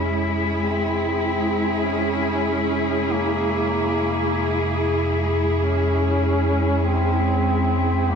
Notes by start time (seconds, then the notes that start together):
Already playing: F2 C3 G#3 C#4 E4 G#4
0.58 C4
1.83 C#4
3.11 A#3
5.60 C#4
6.85 C4
8.11 A#3